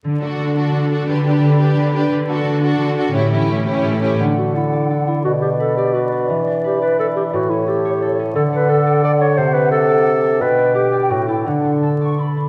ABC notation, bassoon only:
X:1
M:3/4
L:1/8
Q:1/4=174
K:D
V:1 name="Bassoon" clef=bass
z6 | z6 | z6 | z6 |
D,6 | B,,6 | E,6 | A,,6 |
D,6 | =C,6 | B,,3 z A,,2 | D,4- D, z |]